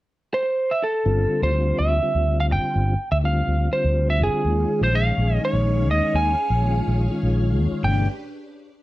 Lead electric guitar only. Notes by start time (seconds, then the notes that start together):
0.34 C5
0.71 E5
0.83 A4
1.43 C5
1.79 E5
2.40 F5
2.52 G5
3.12 E5
3.25 F5
3.73 C5
4.10 E5
4.23 G#4
4.83 C5
4.95 F5
5.45 C#5
5.91 D#5
6.16 G#5
7.84 G5